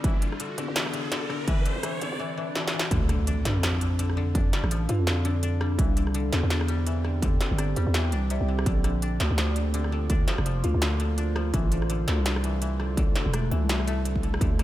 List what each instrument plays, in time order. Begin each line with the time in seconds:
Already playing: ambient pad D4 A4 E5, koto D4, riser
0.04 808-style bass C2, koto E3, ambient pad C4, kick, closed hi-hat
0.21 koto D3, ambient pad G4, closed hi-hat
0.32 cross-stick
0.40 koto D3, closed hi-hat
0.58 808-style bass E2, koto D3, closed hi-hat
0.68 808-style bass E2
0.76 koto E3, ambient pad D5, snare, closed hi-hat
0.86 cross-stick
0.94 koto D3, closed hi-hat
1.12 koto D3, snare, closed hi-hat
1.30 koto D3, cross-stick
1.48 koto E3, kick, closed hi-hat
1.66 koto D3, closed hi-hat
1.76 808-style bass G1
1.83 koto E3, cross-stick, closed hi-hat
2.01 808-style bass E2, koto D3, closed hi-hat
2.12 808-style bass E2
2.19 koto E3, swell
2.37 koto E3
2.55 koto E3, snare
2.68 snare
2.73 koto E3
2.79 snare
2.91 808-style bass D2, koto D3, ambient pad D4, kick, closed hi-hat, impact
3.01 ambient pad A4
3.09 koto D3, cross-stick, closed hi-hat
3.27 koto D4, closed hi-hat
3.45 808-style bass G2, koto G3, snare, closed hi-hat
3.56 808-style bass F2
3.63 koto F3, cross-stick, snare, closed hi-hat
3.81 koto D3, ambient pad F5, closed hi-hat
3.99 koto D3, closed hi-hat
4.10 cross-stick
4.17 koto D3
4.35 koto D4, kick, closed hi-hat
4.53 koto G3, snare, closed hi-hat
4.63 808-style bass A1, cross-stick
4.71 koto F3, closed hi-hat
4.89 808-style bass G2, koto D3, fm electric piano F4, closed hi-hat
4.99 808-style bass F2
5.07 koto D3, cross-stick, snare, closed hi-hat
5.25 koto D3, fm electric piano D4, closed hi-hat
5.43 koto D4, closed hi-hat
5.61 koto G3, cross-stick
5.79 808-style bass C2, koto E3, ambient pad C4, kick, closed hi-hat
5.89 ambient pad D5
5.97 koto D3, closed hi-hat
6.06 ambient pad G4, cross-stick
6.14 koto D3, closed hi-hat
6.33 808-style bass E2, koto D3, snare, closed hi-hat
6.43 808-style bass E2
6.50 koto D4, snare, closed hi-hat
6.61 cross-stick
6.68 koto G3, closed hi-hat
6.86 koto E3, closed hi-hat
7.04 koto D3, cross-stick
7.22 koto D3, kick, closed hi-hat
7.41 koto D3, snare, closed hi-hat
7.51 808-style bass G1
7.58 koto D4, cross-stick, closed hi-hat
7.76 808-style bass E2, koto G3, closed hi-hat
7.87 808-style bass E2
7.94 koto E3, snare, closed hi-hat
8.05 cross-stick
8.12 808-style bass C2, koto D4, closed hi-hat
8.30 koto C3, closed hi-hat
8.41 808-style bass C2
8.48 koto D3
8.59 cross-stick
8.66 808-style bass A#1, koto D3, ambient pad A#3, kick, closed hi-hat
8.84 koto D3, ambient pad F4, cross-stick, closed hi-hat
9.02 koto D4, closed hi-hat
9.20 808-style bass D2, koto F3, ambient pad C5, snare, closed hi-hat
9.31 808-style bass D2
9.38 koto F3, cross-stick, snare, closed hi-hat
9.56 koto D3, closed hi-hat
9.74 koto D3, closed hi-hat
9.84 cross-stick
9.92 koto D3
10.10 koto D4, kick, closed hi-hat
10.28 koto F3, snare, closed hi-hat
10.38 808-style bass F1, cross-stick
10.46 koto F3, closed hi-hat
10.64 808-style bass D2, koto D3, fm electric piano F4, closed hi-hat
10.74 808-style bass D2
10.82 koto D3, cross-stick, snare, closed hi-hat
11.00 koto D3, closed hi-hat
11.18 koto D4, closed hi-hat
11.36 koto F3, cross-stick
11.54 808-style bass A1, koto E3, ambient pad A3, kick, closed hi-hat
11.72 koto D3, ambient pad E4, closed hi-hat
11.82 cross-stick
11.90 koto D3, closed hi-hat
12.08 808-style bass D2, koto D3, snare, closed hi-hat
12.18 808-style bass C2
12.24 koto D4, ambient pad A4, snare, closed hi-hat
12.36 cross-stick
12.44 koto E3, closed hi-hat
12.62 koto E3, closed hi-hat
12.80 koto D3, cross-stick
12.97 koto D3, kick, closed hi-hat
13.16 koto D3, snare, closed hi-hat
13.26 808-style bass E1
13.34 koto D4, cross-stick, closed hi-hat
13.51 808-style bass D2, koto E3, closed hi-hat
13.62 808-style bass C2
13.69 koto E3, snare, closed hi-hat
13.80 cross-stick
13.87 koto A3, closed hi-hat
14.05 koto D3, closed hi-hat
14.16 kick
14.23 koto D3, closed hi-hat
14.34 cross-stick
14.41 808-style bass D2, koto D3, kick, closed hi-hat
14.59 koto D3, cross-stick, closed hi-hat